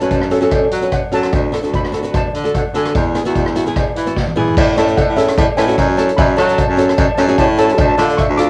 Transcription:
0.01 F#2 C#4 F#4 B4 A5, closed hi-hat
0.11 A5, kick, closed hi-hat, cowbell
0.20 A5, cross-stick
0.30 C#4 F#4 A4, closed hi-hat
0.41 C#4 F#4 A4, closed hi-hat
0.51 kick, cross-stick, closed hi-hat, cowbell
0.71 F#3, closed hi-hat
0.82 C#4 F#4 B4, closed hi-hat
0.92 F#5, kick, cross-stick, closed hi-hat, cowbell
1.12 F#3 C#4 F#4 A4 A5, closed hi-hat
1.23 cross-stick, closed hi-hat
1.33 D2, kick, closed hi-hat, cowbell
1.52 D4 F#4 A4, cross-stick, closed hi-hat
1.63 D2 D4 F#4 A4, closed hi-hat
1.74 B5, kick, closed hi-hat, cowbell
1.84 cross-stick
1.92 D4 F#4 A4, closed hi-hat
2.03 D4 F#4 B4, closed hi-hat
2.14 A5, kick, cross-stick, closed hi-hat, cowbell
2.34 D3, closed hi-hat
2.44 D4 F#4 A4, closed hi-hat
2.54 F#5, kick, cross-stick, closed hi-hat, cowbell
2.74 D3 D4 F#4 A4 G#5, closed hi-hat
2.85 cross-stick, closed hi-hat
2.94 E2, kick, closed hi-hat, cowbell
3.15 B3 E4 G#4, cross-stick, closed hi-hat
3.25 E2 B3 E4 F#4, closed hi-hat
3.35 kick, closed hi-hat, cowbell
3.46 cross-stick
3.55 B3 E4 F#4, closed hi-hat
3.66 B3 E4 G#4, closed hi-hat
3.76 kick, cross-stick, closed hi-hat, cowbell
3.96 E3, closed hi-hat
4.06 B3 E4 F#4, closed hi-hat
4.17 kick, snare, cowbell
4.27 high tom
4.36 E3 B3 E4 G#4, mid tom
4.48 floor tom
4.57 A2 C#5 A5, kick, crash, cowbell
4.76 A2 C#4 E4 A4 C#5 A5, cross-stick, closed hi-hat, cowbell
4.88 closed hi-hat
4.97 A4 F#5, kick, closed hi-hat, cowbell
5.08 A2
5.16 C#4 E4 G#4 A4 E5, closed hi-hat
5.28 cross-stick, closed hi-hat
5.37 A2, kick, closed hi-hat, cowbell
5.57 A2 C#4 E4 A4 B4 G#5, cross-stick, closed hi-hat, cowbell
5.67 C#4 E4 F#4, closed hi-hat
5.78 F#2, kick, closed hi-hat, cowbell
5.97 C#4 E4 A4 C#5 A5, closed hi-hat
6.09 closed hi-hat
6.17 F#2 E5 B5, kick, closed hi-hat, cowbell
6.37 F#3 C#4 F#4 A4 C#5 A5, cross-stick, closed hi-hat, cowbell
6.44 A5
6.49 A5, closed hi-hat
6.58 A5, kick, closed hi-hat, cowbell
6.68 F#2 A5
6.76 C#4 F#4 A4 A5, closed hi-hat
6.83 A5
6.89 A5, cross-stick, closed hi-hat
6.98 F#2 A5, kick, closed hi-hat, cowbell
7.06 A5
7.15 F#2 C#4 F#4 A5, cross-stick, closed hi-hat, cowbell
7.19 A4 A5
7.28 C#4 F#4 G#4, closed hi-hat
7.38 A2 C#5 A5, kick, closed hi-hat, cowbell
7.58 C#4 F#4 A4 C#5 A5, closed hi-hat
7.66 A5, closed hi-hat
7.72 A5
7.78 D2 A5, kick, closed hi-hat, cowbell
7.88 A5
7.95 D3 D4 F4 A5, cross-stick, closed hi-hat, cowbell
7.99 A4 A5
8.09 closed hi-hat
8.17 E5 C#6, kick, closed hi-hat, cowbell
8.29 D2
8.37 D4 F4 A4 F5 D6, closed hi-hat

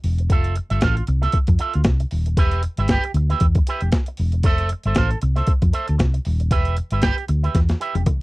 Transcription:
0.04 E1, open hi-hat
0.18 muted clean electric guitar stroke, closed hi-hat
0.30 F1 F4 A4 E5, kick, closed hi-hat
0.44 closed hi-hat
0.56 muted clean electric guitar stroke, closed hi-hat
0.70 G1 F4 A4 E5, closed hi-hat
0.81 A1 F4 A4 F5, kick, snare, closed hi-hat
0.97 muted clean electric guitar stroke, closed hi-hat
1.07 C2, muted clean electric guitar stroke, closed hi-hat
1.22 F4 A4 E5, snare, closed hi-hat
1.32 muted fingered electric bass stroke, kick, closed hi-hat
1.47 F2, muted clean electric guitar stroke, kick, closed hi-hat
1.59 F4 A4 E5, closed hi-hat
1.74 D2, muted clean electric guitar stroke, closed hi-hat
1.84 C2, muted clean electric guitar stroke, kick, snare, closed hi-hat
2.00 muted clean electric guitar stroke, closed hi-hat
2.11 D#1, open hi-hat
2.26 muted clean electric guitar stroke, closed hi-hat
2.37 E1 G4 B4 E5, kick, closed hi-hat
2.51 closed hi-hat
2.63 muted clean electric guitar stroke, closed hi-hat
2.77 G1 G4 B4 E5, closed hi-hat
2.88 G4 B4 G5, kick, snare, closed hi-hat
3.04 muted clean electric guitar stroke, closed hi-hat
3.14 D2, muted clean electric guitar stroke, closed hi-hat
3.30 G4 B4 E5, snare, closed hi-hat
3.40 E2, kick, closed hi-hat
3.55 muted clean electric guitar stroke, kick, closed hi-hat
3.67 G4 B4 E5, closed hi-hat
3.81 E1, muted clean electric guitar stroke, closed hi-hat
3.92 muted clean electric guitar stroke, kick, snare, closed hi-hat
4.06 muted clean electric guitar stroke, closed hi-hat
4.17 E1, open hi-hat
4.32 muted clean electric guitar stroke, closed hi-hat
4.43 F1 A4 C5 E5, kick, closed hi-hat
4.58 closed hi-hat
4.69 muted clean electric guitar stroke, closed hi-hat
4.83 G1 A4 C5 E5, closed hi-hat
4.95 A1 A4 C5 F5, kick, snare, closed hi-hat
5.11 muted clean electric guitar stroke, closed hi-hat
5.21 C2, muted clean electric guitar stroke, closed hi-hat
5.36 A4 C5 E5, snare, closed hi-hat
5.47 muted fingered electric bass stroke, kick, closed hi-hat
5.62 F2, muted clean electric guitar stroke, kick, closed hi-hat
5.73 A4 C5 E5, closed hi-hat
5.87 D2, muted clean electric guitar stroke, closed hi-hat
5.98 C2, muted clean electric guitar stroke, kick, snare, closed hi-hat
6.14 muted clean electric guitar stroke, closed hi-hat
6.25 D#1, open hi-hat
6.40 muted clean electric guitar stroke, closed hi-hat
6.51 E1 G4 B4 E5, kick, closed hi-hat
6.65 closed hi-hat
6.77 muted clean electric guitar stroke, closed hi-hat
6.91 G1 G4 B4 E5, closed hi-hat
7.02 G4 B4 G5, kick, snare, closed hi-hat
7.17 muted clean electric guitar stroke, closed hi-hat
7.28 D2, muted clean electric guitar stroke, closed hi-hat
7.43 G4 B4 E5, closed hi-hat
7.55 E2, kick, snare, closed hi-hat
7.69 muted clean electric guitar stroke, snare, closed hi-hat
7.80 G4 B4 E5, closed hi-hat
7.95 E1, muted clean electric guitar stroke, closed hi-hat, high tom
8.06 muted clean electric guitar stroke, kick, closed hi-hat, mid tom

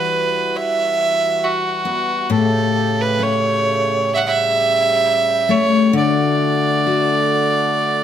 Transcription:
Already playing: E3 G3 E4 F#4 B4
0.56 E5
1.44 F#4
1.85 B3
2.30 A2 C#3 A3 G4 A4
3.01 B4
3.19 C#4 C#5
4.13 G3 E5 F#5
4.27 E5
5.49 A3 C#5
5.93 D3 A3 F#4 D5
6.86 F#4

